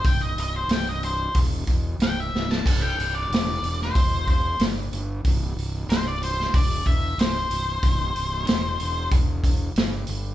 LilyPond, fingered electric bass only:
\new Staff \with { instrumentName = "Fingered electric bass" } { \clef bass \time 4/4 \key c \major \tempo 4 = 93 c,,8 c,,8 c,,4 e,,8 e,,8 c,,8 c,,8 | c,,8 c,,8 e,,8 e,,8 e,,4 g,,8 g,,8 | c,,8 c,,8 c,,4 e,,8 e,,8 c,,8 c,,8 | c,,8 c,,8 e,,8 e,,8 e,,4 g,,8 g,,8 | }